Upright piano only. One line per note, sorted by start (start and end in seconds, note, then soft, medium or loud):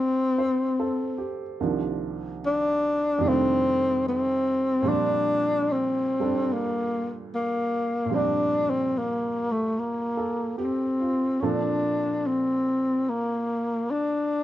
0.00 1.57 D2 soft
0.00 1.58 D3 soft
0.00 1.59 A3 soft
0.00 1.60 C4 soft
0.00 1.62 F4 medium
0.38 0.95 C5 soft
0.80 1.42 A4 soft
1.18 1.75 G4 soft
1.60 3.22 C2 soft
1.60 3.19 C3 soft
1.60 3.22 D#3 soft
1.60 3.23 F3 soft
1.60 3.23 A#3 soft
1.60 3.23 D4 soft
3.18 4.82 F2 soft
3.18 4.84 C3 soft
3.23 4.85 D#3 soft
3.23 4.84 G3 soft
3.28 4.87 A3 soft
3.28 4.86 D4 medium
4.82 8.04 A#2 medium
4.82 8.08 F3 soft
4.82 6.19 G3 soft
4.87 8.11 C4 soft
4.87 6.22 D4 medium
6.20 8.10 G3 soft
6.20 8.12 D4 soft
6.20 8.11 A4 soft
8.05 11.38 A#2 soft
8.05 11.40 F3 soft
8.11 11.41 G3 soft
8.11 11.41 C4 soft
8.16 11.42 D4 soft
10.17 10.75 A4 soft
10.58 11.23 G4 soft
11.00 11.57 F4 soft
11.42 14.44 A#2 soft
11.42 14.44 F3 soft
11.42 14.44 C4 soft
11.42 14.44 D4 soft
11.42 14.44 A4 soft